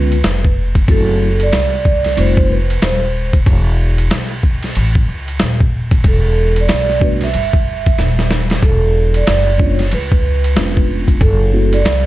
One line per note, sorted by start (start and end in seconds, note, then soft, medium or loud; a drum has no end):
0.00 0.21 C#2 loud
0.00 0.16 D3 medium
0.00 0.16 G#3 medium
0.00 0.17 B3 medium
0.00 0.17 C#4 medium
0.00 0.17 F4 medium
0.00 0.53 B4 medium
0.12 ride soft
0.24 0.85 F1 medium
0.24 snare loud
0.24 hi-hat pedal soft
0.24 ride medium
0.45 kick medium
0.75 kick medium
0.75 ride medium
0.88 1.50 F#1 medium
0.88 1.28 F#3 medium
0.88 1.29 A3 medium
0.88 1.29 C4 medium
0.88 1.29 E4 medium
0.88 1.30 F#4 medium
0.88 1.44 A4 loud
0.88 kick loud
0.88 ride medium
1.40 2.21 D5 medium
1.40 ride soft
1.52 2.14 C2 medium
1.52 snare loud
1.52 hi-hat pedal soft
1.52 ride medium
1.85 kick medium
2.04 snare soft
2.04 ride medium
2.16 2.79 F1 medium
2.16 2.57 G3 medium
2.16 2.57 A3 medium
2.16 2.58 C4 medium
2.16 2.58 D#4 medium
2.16 2.58 F4 medium
2.16 2.52 C5 loud
2.16 ride medium
2.37 kick medium
2.51 2.83 B4 medium
2.70 ride medium
2.82 3.44 D#1 medium
2.82 3.31 C5 medium
2.82 snare loud
2.82 hi-hat pedal soft
2.82 ride medium
3.33 kick medium
3.33 ride medium
3.46 4.08 E1 loud
3.46 kick loud
3.46 ride medium
3.98 ride soft
4.11 4.73 B1 medium
4.11 snare loud
4.11 hi-hat pedal medium
4.11 ride medium
4.43 kick medium
4.63 snare soft
4.63 ride medium
4.75 5.07 A1 loud
4.75 ride medium
4.95 kick medium
5.08 5.39 C#2 medium
5.28 ride soft
5.39 6.02 D#1 medium
5.39 snare loud
5.39 hi-hat pedal soft
5.39 ride medium
5.60 kick medium
5.91 kick loud
5.91 ride medium
6.04 6.66 E1 medium
6.04 kick loud
6.04 ride medium
6.08 6.60 A4 medium
6.56 ride soft
6.61 7.04 D5 medium
6.69 7.31 B1 medium
6.69 snare loud
6.69 hi-hat pedal medium
6.69 ride medium
6.90 snare soft
7.00 7.26 G3 medium
7.00 7.26 A3 medium
7.00 7.26 B3 medium
7.00 7.26 D4 medium
7.00 7.26 F#4 medium
7.00 7.23 B4 medium
7.00 kick medium
7.21 8.27 E5 medium
7.21 snare soft
7.21 ride medium
7.33 7.95 G1 medium
7.33 ride medium
7.53 kick medium
7.86 kick medium
7.86 ride medium
7.98 8.60 D#1 medium
7.98 snare medium
7.98 hi-hat pedal soft
7.98 ride medium
8.19 snare medium
8.31 snare medium
8.50 snare medium
8.50 ride soft
8.63 9.24 E1 medium
8.63 9.17 A4 loud
8.63 kick loud
8.63 ride medium
9.14 9.61 D5 medium
9.14 ride soft
9.27 9.89 F#1 medium
9.27 snare medium
9.27 hi-hat pedal medium
9.27 ride medium
9.58 9.84 G#3 medium
9.58 9.84 B3 medium
9.58 9.84 C#4 medium
9.58 9.84 D4 medium
9.58 9.85 F4 medium
9.58 9.75 C#5 medium
9.58 kick medium
9.79 snare soft
9.79 ride medium
9.91 10.53 C#2 loud
9.91 10.86 B4 medium
9.91 ride medium
10.12 kick medium
10.44 ride medium
10.55 11.18 F1 medium
10.55 11.20 G#3 medium
10.55 11.21 B3 medium
10.55 11.21 C#4 medium
10.55 11.21 D4 medium
10.55 11.21 F4 medium
10.55 snare loud
10.55 hi-hat pedal soft
10.55 ride medium
10.77 kick medium
11.08 kick medium
11.08 ride medium
11.21 11.82 F#1 loud
11.21 11.75 A4 medium
11.21 kick loud
11.21 ride medium
11.52 11.78 F#3 medium
11.52 11.78 A3 medium
11.52 11.78 C4 medium
11.52 11.78 E4 medium
11.52 11.78 F#4 medium
11.73 12.06 D5 medium
11.73 ride medium
11.85 12.06 C2 medium
11.85 snare medium
11.85 hi-hat pedal medium
11.85 ride medium